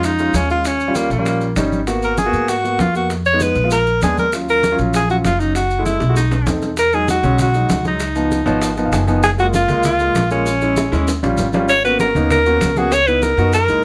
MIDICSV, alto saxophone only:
0, 0, Header, 1, 2, 480
1, 0, Start_track
1, 0, Key_signature, -6, "minor"
1, 0, Tempo, 306592
1, 1021, Time_signature, 4, 2, 24, 8
1, 21671, End_track
2, 0, Start_track
2, 0, Title_t, "Alto saxophone"
2, 0, Program_c, 0, 65
2, 87, Note_on_c, 0, 63, 96
2, 555, Note_on_c, 0, 61, 87
2, 579, Note_off_c, 0, 63, 0
2, 788, Note_off_c, 0, 61, 0
2, 799, Note_on_c, 0, 65, 86
2, 1039, Note_on_c, 0, 61, 89
2, 1063, Note_off_c, 0, 65, 0
2, 1506, Note_on_c, 0, 58, 77
2, 1530, Note_off_c, 0, 61, 0
2, 1743, Note_off_c, 0, 58, 0
2, 1752, Note_on_c, 0, 58, 76
2, 2415, Note_off_c, 0, 58, 0
2, 3194, Note_on_c, 0, 70, 85
2, 3405, Note_off_c, 0, 70, 0
2, 3414, Note_on_c, 0, 68, 85
2, 3903, Note_on_c, 0, 66, 92
2, 3926, Note_off_c, 0, 68, 0
2, 4390, Note_on_c, 0, 65, 93
2, 4414, Note_off_c, 0, 66, 0
2, 4619, Note_off_c, 0, 65, 0
2, 4629, Note_on_c, 0, 66, 85
2, 4846, Note_off_c, 0, 66, 0
2, 5103, Note_on_c, 0, 73, 98
2, 5357, Note_on_c, 0, 71, 90
2, 5380, Note_off_c, 0, 73, 0
2, 5812, Note_off_c, 0, 71, 0
2, 5821, Note_on_c, 0, 70, 97
2, 6264, Note_off_c, 0, 70, 0
2, 6317, Note_on_c, 0, 68, 95
2, 6530, Note_off_c, 0, 68, 0
2, 6562, Note_on_c, 0, 70, 87
2, 6772, Note_off_c, 0, 70, 0
2, 7044, Note_on_c, 0, 70, 99
2, 7477, Note_off_c, 0, 70, 0
2, 7759, Note_on_c, 0, 68, 92
2, 7971, Note_off_c, 0, 68, 0
2, 7993, Note_on_c, 0, 66, 78
2, 8096, Note_off_c, 0, 66, 0
2, 8235, Note_on_c, 0, 65, 86
2, 8448, Note_on_c, 0, 63, 78
2, 8472, Note_off_c, 0, 65, 0
2, 8686, Note_off_c, 0, 63, 0
2, 8695, Note_on_c, 0, 66, 87
2, 9142, Note_off_c, 0, 66, 0
2, 9165, Note_on_c, 0, 64, 75
2, 9616, Note_off_c, 0, 64, 0
2, 9656, Note_on_c, 0, 63, 68
2, 10325, Note_off_c, 0, 63, 0
2, 10625, Note_on_c, 0, 70, 109
2, 10869, Note_on_c, 0, 68, 100
2, 10892, Note_off_c, 0, 70, 0
2, 11102, Note_off_c, 0, 68, 0
2, 11117, Note_on_c, 0, 66, 96
2, 11554, Note_off_c, 0, 66, 0
2, 11615, Note_on_c, 0, 66, 92
2, 12267, Note_off_c, 0, 66, 0
2, 12327, Note_on_c, 0, 63, 78
2, 13690, Note_off_c, 0, 63, 0
2, 14457, Note_on_c, 0, 68, 105
2, 14566, Note_off_c, 0, 68, 0
2, 14712, Note_on_c, 0, 66, 98
2, 14817, Note_off_c, 0, 66, 0
2, 14952, Note_on_c, 0, 65, 92
2, 15393, Note_off_c, 0, 65, 0
2, 15425, Note_on_c, 0, 65, 98
2, 16093, Note_off_c, 0, 65, 0
2, 16149, Note_on_c, 0, 61, 89
2, 17523, Note_off_c, 0, 61, 0
2, 18306, Note_on_c, 0, 73, 100
2, 18527, Note_off_c, 0, 73, 0
2, 18546, Note_on_c, 0, 71, 95
2, 18767, Note_off_c, 0, 71, 0
2, 18786, Note_on_c, 0, 70, 92
2, 19231, Note_off_c, 0, 70, 0
2, 19278, Note_on_c, 0, 70, 102
2, 20005, Note_on_c, 0, 66, 92
2, 20029, Note_off_c, 0, 70, 0
2, 20245, Note_on_c, 0, 73, 106
2, 20268, Note_off_c, 0, 66, 0
2, 20463, Note_on_c, 0, 71, 95
2, 20487, Note_off_c, 0, 73, 0
2, 20702, Note_on_c, 0, 70, 92
2, 20726, Note_off_c, 0, 71, 0
2, 21182, Note_off_c, 0, 70, 0
2, 21199, Note_on_c, 0, 70, 105
2, 21671, Note_off_c, 0, 70, 0
2, 21671, End_track
0, 0, End_of_file